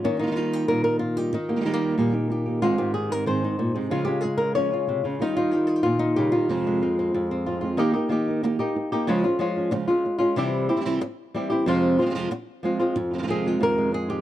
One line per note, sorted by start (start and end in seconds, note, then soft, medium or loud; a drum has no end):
0.04 1.33 D#3 medium
0.04 0.20 A#3 soft
0.04 0.19 C#4 medium
0.04 muted nylon-string guitar stroke medium
0.20 0.25 D#3 soft
0.20 0.26 G3 soft
0.20 1.31 A#3 medium
0.20 0.23 D#4 soft
0.20 0.26 D#4 soft
0.20 0.22 F4 soft
0.20 0.27 F4 soft
0.26 0.30 D#3 soft
0.26 0.31 G3 medium
0.26 0.31 D#4 medium
0.26 0.31 F4 medium
0.31 0.34 D#3 medium
0.31 0.35 G3 medium
0.31 0.35 D#4 medium
0.31 0.36 F4 medium
0.36 0.66 D#3 medium
0.36 0.67 G3 medium
0.36 0.68 D#4 medium
0.36 0.68 F4 medium
0.53 0.68 G4 medium
0.67 1.33 A#2 medium
0.67 0.83 D#3 medium
0.67 0.84 G3 medium
0.67 0.84 D#4 medium
0.67 0.83 F4 medium
0.67 0.83 A#4 loud
0.84 1.00 G3 soft
0.84 1.01 D#4 soft
0.84 1.00 F4 soft
0.84 0.99 A#4 loud
0.99 1.17 F4 medium
0.99 muted nylon-string guitar stroke soft
1.17 1.33 G3 soft
1.17 1.33 D#4 soft
1.17 1.32 F4 soft
1.17 1.33 G4 medium
1.33 2.62 D#3 medium
1.33 2.63 D#4 medium
1.33 muted nylon-string guitar stroke medium
1.49 1.55 A#3 soft
1.49 1.56 D#4 soft
1.49 1.56 G4 soft
1.56 1.60 G3 soft
1.56 1.60 A#3 soft
1.56 1.60 D#4 soft
1.56 1.61 G4 soft
1.61 1.65 G3 medium
1.61 1.65 A#3 medium
1.61 1.65 D#4 medium
1.61 1.65 G4 medium
1.65 1.96 D#3 medium
1.65 1.97 G3 medium
1.65 1.73 G#3 soft
1.65 1.97 A#3 medium
1.65 1.97 D#4 medium
1.65 1.98 G4 medium
1.73 2.62 A#3 soft
1.97 2.62 A#2 medium
1.97 2.13 D#3 medium
1.97 2.13 G3 medium
1.97 2.14 A#3 medium
1.97 2.13 D#4 medium
1.97 2.12 G4 medium
2.13 2.29 A#3 soft
2.13 2.29 D#4 soft
2.13 2.29 G4 soft
2.30 2.61 G4 soft
2.30 muted nylon-string guitar stroke soft
2.46 2.62 A#3 soft
2.46 2.62 D#4 soft
2.46 2.61 G4 soft
2.61 2.77 G#2 medium
2.61 2.78 D#3 medium
2.61 2.78 G#3 medium
2.61 2.78 C4 medium
2.61 2.77 D#4 medium
2.61 2.94 F4 medium
2.61 2.77 G#4 medium
2.78 3.25 D#3 medium
2.78 2.93 G#3 soft
2.78 2.93 C4 soft
2.78 2.94 D#4 soft
2.78 3.27 G4 medium
2.78 2.94 G#4 soft
2.94 3.12 G#4 medium
2.94 muted nylon-string guitar stroke medium
3.10 3.26 G#3 soft
3.10 3.27 C4 soft
3.10 3.26 D#4 soft
3.10 3.26 G#4 soft
3.10 3.27 A#4 medium
3.26 3.42 G#2 medium
3.26 3.42 D#3 medium
3.26 3.43 G#3 medium
3.26 3.43 C4 medium
3.26 3.42 D#4 medium
3.26 3.41 G#4 medium
3.26 3.76 C5 medium
3.42 3.57 G#3 soft
3.42 3.58 C4 soft
3.42 3.58 D#4 soft
3.42 3.58 G#4 soft
3.58 3.75 A#2 medium
3.58 muted nylon-string guitar stroke medium
3.74 3.92 C3 medium
3.74 3.90 G#3 soft
3.74 3.91 C4 soft
3.74 3.91 D#4 soft
3.74 3.90 G#4 soft
3.90 4.06 C#3 medium
3.90 4.06 F3 medium
3.90 4.07 G#3 medium
3.90 4.07 C#4 medium
3.90 4.06 F4 medium
4.05 4.23 C#4 soft
4.05 4.23 F4 soft
4.05 4.21 G4 medium
4.10 4.23 G#3 soft
4.21 4.71 G#4 medium
4.21 muted nylon-string guitar stroke medium
4.38 4.56 C#4 soft
4.38 4.55 F4 soft
4.38 4.55 A#4 medium
4.42 4.55 G#3 soft
4.55 4.71 C#3 medium
4.55 4.71 F3 medium
4.55 4.72 G#3 medium
4.55 4.71 C#4 medium
4.55 4.70 F4 medium
4.55 5.04 C#5 medium
4.71 4.87 G#3 soft
4.71 4.87 C#4 soft
4.71 4.87 F4 soft
4.87 5.05 C3 medium
4.87 muted nylon-string guitar stroke medium
5.04 5.21 C#3 medium
5.04 5.20 G#3 soft
5.04 5.20 C#4 soft
5.04 5.20 F4 soft
5.19 5.52 D#3 medium
5.19 5.52 G3 medium
5.19 5.53 D#4 medium
5.19 5.52 F4 medium
5.37 5.98 D#4 medium
5.37 5.82 F4 medium
5.51 5.84 G3 soft
5.51 5.85 D#4 soft
5.51 5.85 F4 soft
5.51 5.67 G4 loud
5.67 5.76 G#4 loud
5.76 6.15 G4 medium
5.83 6.48 A#2 medium
5.83 6.31 F4 medium
5.83 muted nylon-string guitar stroke soft
5.99 6.49 D#4 medium
6.16 6.34 C#3 medium
6.16 6.33 D#3 soft
6.16 6.34 G3 soft
6.16 6.34 D#4 medium
6.16 6.32 F4 soft
6.16 6.49 G4 loud
6.33 6.50 D#3 medium
6.33 6.50 G3 soft
6.33 6.50 D#4 soft
6.33 6.49 F4 soft
6.49 6.81 F2 medium
6.49 6.81 C3 medium
6.49 6.81 F3 medium
6.49 6.82 G#3 medium
6.49 6.81 C4 medium
6.49 6.80 F4 medium
6.67 7.77 G#3 medium
6.81 7.13 F3 soft
6.81 7.14 G#3 soft
6.81 7.14 C4 soft
6.81 7.13 F4 soft
6.99 7.30 C4 soft
7.14 7.79 F2 medium
7.14 muted nylon-string guitar stroke medium
7.31 7.78 C4 soft
7.46 7.62 F3 soft
7.46 7.62 G#3 soft
7.46 7.62 C4 medium
7.46 7.61 F4 medium
7.63 7.78 F3 soft
7.63 7.79 G#3 soft
7.63 7.79 C4 soft
7.63 7.78 F4 soft
7.78 7.94 D#3 medium
7.78 7.95 A#3 medium
7.78 7.95 D#4 medium
7.78 7.94 G4 medium
7.95 8.10 A#3 soft
7.95 8.11 D#4 soft
7.95 8.10 G4 soft
8.09 8.42 D#3 medium
8.09 8.42 A#3 medium
8.09 8.42 D#4 medium
8.09 8.43 G4 medium
8.09 muted nylon-string guitar stroke medium
8.27 8.42 A#3 soft
8.27 8.43 D#4 soft
8.27 8.43 G4 soft
8.42 8.58 D#3 medium
8.42 8.59 A#3 medium
8.42 8.59 D#4 medium
8.42 8.58 G4 medium
8.42 muted nylon-string guitar stroke medium
8.59 8.75 A#3 soft
8.59 8.75 D#4 soft
8.59 8.75 G4 soft
8.75 muted nylon-string guitar stroke soft
8.92 9.08 A#3 soft
8.92 9.08 D#4 soft
8.92 9.07 G4 soft
9.08 9.23 C#3 medium
9.08 9.23 F3 medium
9.08 9.24 G#3 medium
9.08 9.24 C#4 medium
9.08 9.24 F4 medium
9.25 9.40 G#3 soft
9.25 9.40 C#4 soft
9.25 9.40 F4 soft
9.39 9.71 F3 medium
9.39 9.71 G#3 medium
9.39 9.71 C#4 medium
9.39 9.71 F4 medium
9.39 muted nylon-string guitar stroke medium
9.57 9.72 G#3 soft
9.57 9.72 C#4 soft
9.57 9.72 F4 medium
9.71 9.88 C#3 medium
9.71 9.88 F3 medium
9.71 9.89 G#3 medium
9.71 9.89 C#4 medium
9.71 9.87 F4 medium
9.71 muted nylon-string guitar stroke medium
9.89 10.05 G#3 soft
9.89 10.05 C#4 soft
9.89 10.04 F4 soft
10.05 muted nylon-string guitar stroke medium
10.20 10.37 G#3 soft
10.20 10.37 C#4 soft
10.20 10.36 F4 soft
10.36 10.68 C3 medium
10.36 10.68 E3 medium
10.36 10.69 G3 medium
10.36 10.69 C4 medium
10.36 10.68 E4 medium
10.36 10.68 G4 medium
10.69 10.76 G3 soft
10.69 10.76 C4 soft
10.69 10.76 E4 soft
10.69 11.01 G4 medium
10.76 10.79 E3 soft
10.76 10.80 G3 soft
10.76 10.80 C4 medium
10.76 10.80 E4 medium
10.81 10.84 E3 medium
10.81 10.85 G3 medium
10.81 10.85 C4 medium
10.81 10.85 E4 medium
10.85 11.01 C3 medium
10.85 11.01 E3 medium
10.85 11.01 G3 medium
10.85 11.01 C4 medium
10.85 11.01 E4 medium
11.02 muted nylon-string guitar stroke medium
11.34 11.66 E3 soft
11.34 11.66 G3 soft
11.34 11.67 C4 soft
11.34 11.67 E4 soft
11.34 11.49 G4 medium
11.50 11.67 C4 soft
11.50 11.66 E4 medium
11.50 11.65 G4 medium
11.66 11.98 F2 medium
11.66 11.98 C3 medium
11.66 11.99 F3 medium
11.66 11.98 G#3 medium
11.66 11.98 C4 medium
11.66 11.97 F4 medium
11.98 12.04 C3 soft
11.98 12.05 F3 soft
11.98 12.01 G#3 soft
11.98 12.05 G#3 soft
11.98 12.01 C4 soft
11.98 12.05 C4 soft
11.98 12.01 F4 soft
11.98 12.06 F4 soft
12.06 12.09 C3 soft
12.06 12.09 F3 medium
12.06 12.10 G#3 medium
12.06 12.10 C4 medium
12.06 12.10 F4 medium
12.10 12.14 C3 medium
12.10 12.14 F3 medium
12.10 12.14 G#3 medium
12.10 12.15 C4 medium
12.10 12.15 F4 medium
12.15 12.29 F2 medium
12.15 12.30 C3 medium
12.15 12.30 F3 medium
12.15 12.30 G#3 medium
12.15 12.31 C4 medium
12.15 12.31 F4 medium
12.31 muted nylon-string guitar stroke medium
12.63 12.95 F3 soft
12.63 12.96 G#3 soft
12.63 12.96 C4 soft
12.63 12.96 F4 soft
12.79 12.96 F3 soft
12.79 12.96 G#3 medium
12.79 12.96 C4 medium
12.79 12.95 F4 medium
12.96 13.59 F2 medium
12.96 muted nylon-string guitar stroke medium
13.11 13.17 C3 soft
13.11 13.17 D#3 soft
13.11 13.18 G#3 soft
13.11 13.14 C4 soft
13.11 13.18 C4 soft
13.11 13.14 F4 soft
13.15 13.22 C3 medium
13.15 13.22 D#3 medium
13.15 13.23 C4 soft
13.15 13.18 F4 soft
13.19 13.26 C3 medium
13.19 13.22 G#3 medium
13.19 13.23 F4 medium
13.23 13.58 F2 medium
13.23 13.27 D#3 medium
13.23 13.27 G#3 medium
13.23 13.27 C4 medium
13.23 13.27 F4 medium
13.27 13.59 C3 medium
13.27 13.59 D#3 medium
13.27 13.59 G#3 medium
13.27 13.60 C4 medium
13.27 13.60 F4 medium
13.27 13.47 G#4 medium
13.46 13.78 G#3 medium
13.46 13.62 F4 medium
13.59 13.91 F2 medium
13.59 13.91 C3 medium
13.59 13.91 D#3 medium
13.59 13.92 G#3 medium
13.59 13.92 C4 medium
13.59 13.92 F4 medium
13.59 13.94 A#4 loud
13.78 14.21 G#3 medium
13.92 14.21 G#4 medium
13.92 muted nylon-string guitar stroke medium
14.08 14.21 D#3 soft
14.08 14.21 G#3 soft
14.08 14.21 C4 soft
14.08 14.21 F4 medium
14.08 14.21 G4 medium